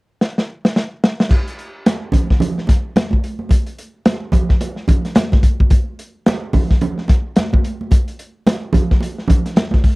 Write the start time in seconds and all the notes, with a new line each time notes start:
0.21 snare
0.38 snare
0.65 snare
0.76 snare
1.04 snare
1.20 snare
1.29 kick, crash, muted conga
1.48 closed hi-hat
1.59 closed hi-hat
1.86 snare, closed hi-hat, high conga
2.12 kick, closed hi-hat, muted conga, low conga
2.30 kick, snare
2.40 closed hi-hat, muted conga, low conga
2.58 snare
2.67 kick, snare, closed hi-hat, muted conga
2.96 snare, closed hi-hat, high conga
3.11 kick, high conga
3.24 closed hi-hat
3.39 high conga
3.49 kick, closed hi-hat, muted conga
3.66 closed hi-hat
3.78 closed hi-hat
4.05 snare, closed hi-hat, high conga
4.32 kick, closed hi-hat, muted conga, low conga
4.49 kick, snare
4.61 closed hi-hat, muted conga
4.76 snare
4.88 kick, closed hi-hat, muted conga, low conga
5.05 snare, closed hi-hat
5.15 snare, closed hi-hat, high conga
5.32 kick, snare, high conga
5.43 kick, closed hi-hat
5.60 kick, high conga
5.70 kick, closed hi-hat, muted conga
5.99 closed hi-hat
6.26 snare, closed hi-hat, high conga
6.53 kick, open hi-hat, muted conga, low conga
6.70 kick, snare
6.81 closed hi-hat, muted conga, low conga
6.98 snare
7.08 kick, snare, closed hi-hat, muted conga
7.36 snare, closed hi-hat, high conga
7.53 kick, high conga
7.64 closed hi-hat
7.81 high conga
7.91 kick, closed hi-hat, muted conga
8.08 closed hi-hat
8.19 closed hi-hat
8.47 snare, closed hi-hat, high conga
8.73 kick, closed hi-hat, muted conga, low conga
8.91 kick, snare
9.00 closed hi-hat, muted conga
9.18 snare
9.28 kick, closed hi-hat, muted conga, low conga
9.46 snare, closed hi-hat
9.56 snare, closed hi-hat, high conga
9.71 kick, snare, high conga
9.84 kick, open hi-hat